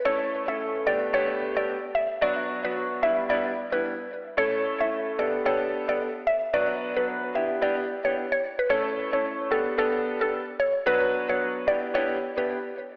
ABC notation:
X:1
M:4/4
L:1/16
Q:"Swing 16ths" 1/4=111
K:Amix
V:1 name="Synth pluck"
c z2 e z2 d z c z2 d z2 e z | d2 z B z2 e z d z2 B z4 | c z2 e z2 d z c z2 d z2 e z | d2 z B z2 e z d z2 c z c z B |
c z2 c z2 A z A z2 A z2 c z | B2 z c z2 d z c z2 B z4 |]
V:2 name="Grand piano"
[A,CEA]3 [A,CEA]3 [A,B,DG]2 [A,B,DG]3 [A,B,DG] z4 | [F,B,DF]3 [F,B,DF]3 [G,B,DE]2 [G,B,DE]2 z [G,B,DE] z4 | [A,CEA]3 [A,CEA]3 [B,DGA]2 [B,DGA]3 [B,DGA] z4 | [F,B,DFB]3 [F,B,DFB]3 [B,DEG]2 [B,DEG]2 z [B,DEG] z4 |
[A,CEA]3 [A,CEA]3 [B,DGA]2 [B,DGA]3 [B,DGA] z4 | [F,B,DFB]3 [F,B,DFB]3 [B,DEG]2 [B,DEG]2 z [B,DEG] z4 |]